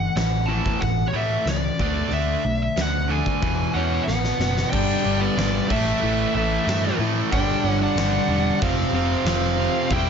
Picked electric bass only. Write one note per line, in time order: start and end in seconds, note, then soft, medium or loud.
0.15 0.59 A1 medium
0.82 1.03 A1 medium
1.13 1.35 A2 medium
1.45 1.68 C#2 medium
1.79 2.01 D2 medium
2.10 2.33 D2 medium
2.44 2.66 B1 medium
2.76 3.20 D2 medium
3.43 3.64 E1 medium
3.75 3.96 E2 medium
4.07 4.29 A1 medium
4.39 4.61 F#1 medium
4.73 4.93 G1 medium
5.05 5.26 G1 medium
5.37 5.58 G#1 medium
5.70 5.91 A1 medium
6.02 6.23 A1 medium
6.35 6.55 A1 medium
6.67 6.87 G2 medium
6.98 7.19 A2 medium
7.32 7.53 G1 loud
7.64 7.84 G1 medium
7.95 8.16 G1 medium
8.28 8.49 E1 medium
8.62 8.82 F1 medium
8.93 9.13 F1 medium
9.25 9.66 F1 medium
9.90 10.10 E1 loud